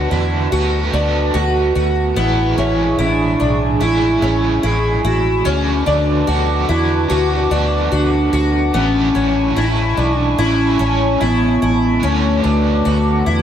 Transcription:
0.00 0.51 D3 medium
0.00 0.52 A3 medium
0.00 0.53 B3 medium
0.00 0.90 D4 loud
0.00 0.11 F#4 medium
0.00 0.54 F#4 medium
0.00 2.13 F#4 medium
0.00 2.14 B4 medium
0.00 1.83 D5 medium
0.00 2.14 A5 medium
0.11 0.47 E2 medium
0.11 0.52 E4 medium
0.52 0.88 D2 loud
0.52 0.93 D3 medium
0.52 0.94 A3 medium
0.52 0.94 B3 medium
0.52 0.93 F#4 medium
0.52 0.91 F#4 loud
0.92 1.30 D2 loud
0.92 2.17 B3 medium
0.92 1.35 D4 medium
0.92 2.16 F#4 medium
0.97 2.19 A3 soft
1.34 1.71 D2 loud
1.34 1.74 F#4 medium
1.34 2.19 F#4 medium
1.75 2.12 D2 medium
1.75 2.17 F#4 medium
2.15 2.53 A1 loud
2.15 3.79 A2 medium
2.15 3.80 E3 medium
2.15 2.57 B3 loud
2.15 5.42 E4 medium
2.15 2.96 E4 medium
2.15 5.42 G#4 medium
2.15 5.42 G#5 medium
2.15 5.42 C#6 medium
2.19 3.81 G#3 medium
2.19 3.82 E4 medium
2.58 2.94 A1 loud
2.58 2.99 C#4 medium
2.58 5.12 E5 medium
2.99 3.35 A1 loud
2.99 3.83 D4 medium
2.99 3.40 E4 medium
3.40 3.76 B1 loud
3.40 3.81 D4 medium
3.80 4.17 A1 loud
3.80 4.22 A2 medium
3.80 4.22 E3 medium
3.80 4.23 G#3 medium
3.80 4.22 C#4 medium
3.80 4.22 E4 medium
3.80 4.20 E4 medium
3.80 4.67 E4 loud
4.21 4.58 A1 medium
4.21 4.63 C#4 medium
4.21 5.46 C#4 soft
4.21 5.45 E4 medium
4.25 5.46 G#3 soft
4.63 5.00 A1 loud
4.63 5.03 E4 medium
4.63 5.03 G#4 loud
5.04 5.41 A1 loud
5.04 5.46 E4 medium
5.04 7.48 F#4 medium
5.45 5.82 D2 loud
5.45 6.25 D3 medium
5.45 6.28 A3 medium
5.45 6.29 B3 medium
5.45 5.86 C#4 loud
5.45 8.71 F#4 medium
5.45 6.29 F#4 medium
5.45 8.71 B4 medium
5.45 8.71 A5 medium
5.45 8.71 D6 medium
5.86 6.23 D2 loud
5.86 6.28 D4 medium
5.86 8.40 D5 medium
6.26 6.64 D2 loud
6.26 7.07 D3 medium
6.26 7.10 A3 medium
6.26 7.10 B3 medium
6.26 6.68 F#4 medium
6.31 7.11 F#4 medium
6.69 7.05 E2 medium
6.69 7.09 E4 medium
7.09 7.46 D2 loud
7.09 7.50 D3 medium
7.09 7.51 A3 medium
7.09 7.51 B3 medium
7.09 7.51 F#4 loud
7.09 7.49 F#4 medium
7.50 7.87 D2 loud
7.50 8.75 B3 medium
7.50 7.92 D4 medium
7.50 8.74 F#4 medium
7.54 8.75 A3 medium
7.92 8.28 D2 loud
7.92 8.76 D4 loud
7.92 8.32 F#4 medium
8.33 8.69 D2 loud
8.33 8.74 F#4 medium
8.73 9.10 A1 loud
8.73 9.56 A2 medium
8.73 9.54 E3 medium
8.73 9.56 G#3 medium
8.73 9.14 B3 loud
8.73 9.57 C#4 medium
8.73 9.54 C#4 loud
8.73 12.00 E4 medium
8.73 9.58 E4 medium
8.73 12.00 G#5 medium
8.73 12.00 A5 medium
8.73 12.00 C#6 medium
9.15 9.52 A1 loud
9.15 9.56 C#4 medium
9.55 9.93 A1 loud
9.55 10.37 E3 medium
9.55 10.38 G#3 medium
9.55 10.39 C#4 medium
9.55 9.98 E4 medium
9.55 10.19 E4 loud
9.60 10.39 E4 medium
9.97 10.34 B1 medium
9.97 10.39 D4 medium
10.19 10.42 D4 loud
10.37 10.75 A1 loud
10.37 10.79 A2 medium
10.37 10.80 E3 medium
10.37 10.80 G#3 medium
10.37 10.79 C#4 medium
10.37 11.24 C#4 loud
10.37 10.80 E4 medium
10.37 10.77 E4 medium
10.78 11.16 A1 medium
10.78 11.21 C#4 medium
10.78 12.03 C#4 soft
10.78 12.02 E4 soft
10.83 12.03 G#3 soft
11.21 11.57 A1 loud
11.21 12.05 B3 loud
11.21 11.61 E4 medium
11.62 11.98 A1 loud
11.62 12.03 E4 medium
12.00 12.40 D2 loud
12.00 13.42 D3 medium
12.00 13.42 A3 medium
12.00 12.43 C#4 loud
12.00 13.42 F#4 medium
12.00 13.42 B4 medium
12.00 13.42 A5 medium
12.00 13.42 D6 medium
12.05 13.42 A3 medium
12.05 13.42 B3 medium
12.05 13.42 F#4 medium
12.44 12.81 D2 loud
12.44 12.85 D4 medium
12.85 13.22 D2 loud
12.85 13.26 F#4 medium
13.26 13.42 E2 medium
13.26 13.42 E4 medium

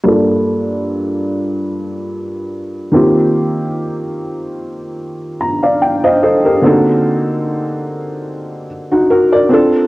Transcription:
0.04 2.89 G2 medium
0.04 2.89 A#3 medium
0.04 2.90 D4 medium
0.04 2.90 F4 medium
0.08 2.91 A4 medium
2.92 5.35 D#3 medium
2.92 5.36 A#3 medium
2.92 5.36 C4 medium
2.92 5.37 F4 medium
2.96 5.37 G4 medium
5.41 5.79 A#5 medium
5.63 6.02 D5 soft
5.63 6.02 F5 medium
5.82 6.02 G5 medium
6.04 6.21 C5 medium
6.04 6.21 D#5 medium
6.04 6.21 F5 medium
6.23 6.44 A4 medium
6.23 6.44 C5 medium
6.23 6.61 D#5 medium
6.45 6.84 G4 soft
6.45 6.84 A#4 medium
6.62 9.46 D3 medium
6.62 9.47 A#3 medium
6.62 9.47 C4 medium
6.62 8.66 D#4 medium
6.62 8.66 F#4 medium
6.66 8.66 A4 medium
8.92 9.10 D#4 medium
8.92 9.09 F#4 medium
9.10 9.32 F#4 medium
9.10 9.31 A#4 medium
9.32 9.72 A#4 medium
9.32 9.71 D5 medium
9.49 9.87 C4 medium
9.49 9.87 D4 medium
9.49 9.87 F4 medium
9.54 9.87 A4 medium

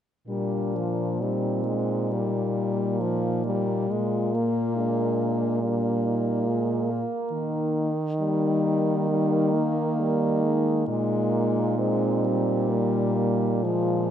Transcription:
0.28 3.86 A#2 soft
0.28 0.77 G3 soft
0.28 1.23 A#3 soft
0.28 1.22 D4 soft
0.76 1.23 F3 soft
1.21 1.65 G3 soft
1.21 2.15 C4 soft
1.21 3.89 D#4 soft
1.66 2.12 G#3 soft
2.11 3.02 G3 soft
2.11 4.77 A#3 soft
3.00 3.45 F3 soft
3.45 3.92 G3 soft
3.90 7.03 A#2 soft
3.90 4.36 G#3 soft
3.90 4.79 F4 soft
4.34 5.62 A#3 soft
4.77 5.64 G#3 soft
4.77 5.62 D4 soft
5.62 6.49 G3 soft
5.62 7.90 A#3 soft
5.62 6.06 D4 soft
6.05 6.48 D#4 soft
6.46 6.92 G#3 soft
6.46 7.06 F4 soft
6.90 7.94 A#3 soft
7.32 10.84 D#3 soft
7.32 9.96 D#4 soft
8.20 9.06 G3 soft
8.20 10.01 A#3 soft
9.10 9.56 G3 soft
9.55 10.88 A#3 soft
9.99 10.44 G3 soft
9.99 13.65 D#4 soft
10.43 10.87 G#3 soft
10.88 14.11 A#2 soft
10.88 11.77 G#3 soft
10.88 11.80 A#3 soft
11.79 12.25 G#3 soft
11.79 12.71 C4 soft
12.24 13.65 G3 soft
12.70 13.15 A#3 soft
13.15 13.64 A#3 soft
13.63 14.11 F3 soft
13.63 14.11 G#3 soft
13.63 14.11 F4 soft

